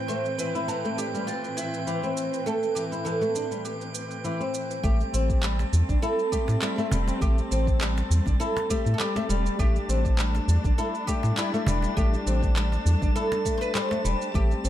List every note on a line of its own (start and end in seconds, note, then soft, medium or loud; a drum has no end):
0.00 4.80 A2 medium
0.00 4.80 E3 medium
0.00 4.80 C4 medium
0.00 4.80 B4 medium
0.00 4.85 G5 medium
0.08 0.24 A3 medium
0.08 0.36 C5 medium
0.08 shaker soft
0.25 shaker soft
0.38 0.53 E3 medium
0.38 0.68 B4 medium
0.38 shaker medium
0.55 0.67 E4 medium
0.55 shaker soft
0.68 0.83 E3 medium
0.68 0.96 A4 medium
0.68 shaker soft
0.85 0.97 A3 medium
0.85 shaker soft
0.98 1.07 D4 medium
0.98 1.28 G4 medium
0.98 shaker medium
1.14 1.27 G3 medium
1.14 shaker soft
1.27 1.56 F4 medium
1.27 shaker soft
1.44 shaker soft
1.57 2.12 E4 medium
1.57 shaker medium
1.74 shaker soft
1.87 2.02 E3 medium
1.87 shaker soft
2.03 2.45 C4 medium
2.03 shaker soft
2.17 shaker medium
2.33 shaker soft
2.46 2.61 A3 medium
2.46 2.75 A4 loud
2.46 shaker soft
2.63 shaker soft
2.75 2.90 E3 medium
2.75 2.83 G4 medium
2.75 shaker medium
2.92 3.04 E4 medium
2.92 shaker soft
3.05 3.21 E3 medium
3.05 3.64 A4 loud
3.05 shaker soft
3.21 3.34 A3 medium
3.21 shaker soft
3.35 3.44 D4 medium
3.35 shaker medium
3.51 3.64 G3 medium
3.51 shaker soft
3.65 4.50 G4 medium
3.65 shaker soft
3.81 shaker soft
3.95 shaker medium
4.11 shaker soft
4.24 4.40 E3 medium
4.24 shaker soft
4.40 4.82 C4 medium
4.40 shaker soft
4.54 shaker medium
4.71 shaker soft
4.83 5.03 A1 loud
4.83 14.69 G3 medium
4.83 4.99 A3 medium
4.83 14.69 A3 medium
4.83 9.58 C4 medium
4.83 6.02 G4 medium
4.83 14.69 A5 medium
4.83 kick loud
4.83 shaker soft
5.01 shaker soft
5.13 5.65 A1 medium
5.13 5.42 C4 medium
5.13 shaker medium
5.30 kick medium
5.30 shaker soft
5.43 5.59 G3 medium
5.43 clap loud
5.43 shaker soft
5.59 cajon slap medium
5.59 shaker soft
5.73 5.83 E2 loud
5.73 shaker medium
5.89 5.97 A1 medium
5.89 5.97 D4 medium
5.89 kick loud
5.89 shaker soft
6.02 6.18 E4 medium
6.02 6.32 A4 loud
6.02 shaker soft
6.19 shaker soft
6.32 6.61 A3 loud
6.32 6.63 G4 medium
6.32 kick medium
6.32 shaker medium
6.48 6.57 A2 medium
6.48 cajon slap medium
6.48 shaker soft
6.62 6.77 G3 medium
6.62 7.05 E4 medium
6.62 clap loud
6.62 shaker soft
6.78 6.86 A3 loud
6.78 shaker soft
6.91 7.11 E1 loud
6.91 7.20 G3 medium
6.91 cajon bass medium
6.91 shaker medium
7.08 cajon slap medium
7.08 shaker soft
7.21 7.41 A1 loud
7.21 7.37 A3 medium
7.21 8.39 G4 loud
7.21 kick loud
7.21 shaker soft
7.38 shaker soft
7.51 8.02 A1 medium
7.51 7.79 C4 medium
7.51 shaker medium
7.67 kick loud
7.67 shaker soft
7.81 7.96 G3 medium
7.81 clap loud
7.81 shaker soft
7.98 cajon slap medium
7.98 shaker soft
8.10 8.20 E2 medium
8.10 shaker medium
8.26 8.35 A1 loud
8.26 8.34 D4 medium
8.26 kick loud
8.26 cajon slap soft
8.26 shaker soft
8.40 8.56 E4 medium
8.40 8.68 A4 loud
8.40 shaker medium
8.57 cajon slap medium
8.57 shaker soft
8.70 8.98 A3 loud
8.70 8.93 G4 loud
8.70 kick medium
8.70 shaker medium
8.86 8.94 A2 medium
8.86 shaker soft
8.94 8.99 A4 medium
9.00 9.15 G3 medium
9.00 9.42 G4 medium
9.00 clap loud
9.00 shaker soft
9.16 9.24 A3 loud
9.16 cajon slap medium
9.16 shaker soft
9.29 9.48 E1 loud
9.29 9.58 G3 loud
9.29 shaker medium
9.46 shaker soft
9.59 9.78 A1 loud
9.59 9.74 A3 medium
9.59 14.34 D4 medium
9.59 10.78 G4 loud
9.59 kick loud
9.59 shaker soft
9.76 shaker soft
9.88 10.40 A1 medium
9.88 10.17 C4 medium
9.88 shaker medium
10.05 kick loud
10.05 shaker soft
10.19 10.34 G3 medium
10.19 clap loud
10.19 shaker soft
10.35 cajon slap medium
10.35 shaker soft
10.48 10.58 E2 loud
10.48 shaker medium
10.64 10.73 A1 loud
10.64 10.72 D4 medium
10.64 kick loud
10.64 shaker soft
10.78 10.94 E4 medium
10.78 10.86 A4 loud
10.78 shaker medium
10.95 shaker soft
11.07 11.36 A3 loud
11.07 11.35 G4 loud
11.07 kick medium
11.07 shaker medium
11.23 11.32 A2 medium
11.23 cajon slap medium
11.23 shaker soft
11.37 11.53 G3 medium
11.37 11.80 E4 medium
11.37 clap loud
11.37 shaker medium
11.54 11.61 A3 loud
11.54 shaker soft
11.67 11.86 E1 loud
11.67 11.96 G3 loud
11.67 cajon bass loud
11.67 shaker medium
11.82 cajon slap medium
11.82 shaker soft
11.97 12.16 A1 loud
11.97 12.12 A3 medium
11.97 13.15 G4 loud
11.97 kick loud
11.97 shaker soft
12.14 shaker soft
12.26 12.77 A1 medium
12.26 12.55 C4 medium
12.26 shaker medium
12.43 kick loud
12.43 shaker soft
12.56 12.72 G3 medium
12.56 clap loud
12.56 shaker soft
12.72 cajon slap medium
12.72 shaker soft
12.86 12.96 E2 loud
12.86 shaker medium
13.02 13.10 A1 loud
13.02 13.10 D4 medium
13.02 kick loud
13.02 cajon slap soft
13.02 shaker soft
13.15 13.31 E4 medium
13.15 13.57 A4 loud
13.15 shaker soft
13.32 cajon slap medium
13.32 shaker soft
13.45 13.73 A3 loud
13.45 kick medium
13.45 shaker medium
13.57 13.75 B4 loud
13.57 13.61 C5 medium
13.62 shaker soft
13.75 13.90 G3 medium
13.75 14.18 C5 loud
13.75 clap loud
13.75 shaker soft
13.91 13.99 A3 loud
13.91 cajon slap medium
13.91 shaker soft
14.04 14.15 E1 medium
14.04 14.33 G3 loud
14.04 shaker medium
14.22 shaker soft
14.34 14.54 A1 loud
14.34 14.50 A3 medium
14.34 14.69 C4 medium
14.34 14.69 G4 loud
14.34 kick loud
14.34 shaker soft
14.51 shaker soft
14.64 14.69 A1 medium
14.64 14.69 C4 medium
14.64 shaker medium